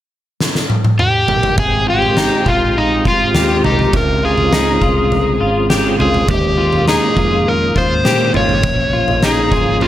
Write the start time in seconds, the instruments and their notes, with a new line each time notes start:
0.40 snare
0.55 snare
0.70 high tom
0.85 high tom
0.99 electric slide guitar G4, mid tom
1.28 floor tom
1.43 floor tom
1.57 fingered electric bass G#1, tonewheel organ G#3 C4 G4, electric slide guitar G#4, kick, floor tom
1.88 clean electric guitar F4, electric slide guitar G4
2.02 floor tom
2.17 clean electric guitar D#4, snare
2.46 fingered electric bass A#1, clean electric guitar F4, electric slide guitar F4, kick, floor tom
2.78 electric slide guitar D#4
3.05 fingered electric bass G#1, clean electric guitar F4, electric slide guitar F4, kick
3.34 fingered electric bass D#2, clean electric guitar G4, snare
3.64 fingered electric bass C2, clean electric guitar D#4, electric slide guitar G4, floor tom
3.79 floor tom
3.93 fingered electric bass C#2, tonewheel organ C4 C#4 F4, electric slide guitar A#4, kick, floor tom
4.23 clean electric guitar F4, electric slide guitar G#4
4.38 fingered electric bass C#2, floor tom
4.52 clean electric guitar D#4, snare
4.81 fingered electric bass C2, clean electric guitar F4, kick, floor tom
5.12 floor tom
5.41 fingered electric bass G#1, clean electric guitar F4
5.70 clean electric guitar G4, snare
5.99 fingered electric bass C#2, clean electric guitar F4, electric slide guitar G#4, floor tom
6.14 floor tom
6.28 fingered electric bass D#2, tonewheel organ D#3 G#3 A#3 C#4, electric slide guitar G4, kick, floor tom
6.58 clean electric guitar F4
6.73 floor tom
6.88 clean electric guitar D#4, electric slide guitar G#4, snare
7.17 fingered electric bass F2, clean electric guitar F4, kick, floor tom
7.48 electric slide guitar A#4
7.76 fingered electric bass D#2, clean electric guitar F4, electric slide guitar C5, kick
8.05 fingered electric bass A#2, clean electric guitar G4, snare
8.34 fingered electric bass G#1, clean electric guitar F4, electric slide guitar C#5, floor tom
8.49 floor tom
8.63 fingered electric bass A#1, tonewheel organ F3, kick, floor tom
8.93 clean electric guitar F4
9.08 fingered electric bass A#1, floor tom
9.23 clean electric guitar D#4, electric slide guitar G#4, snare
9.52 fingered electric bass G#1, clean electric guitar F4, kick, floor tom
9.81 electric slide guitar F4, floor tom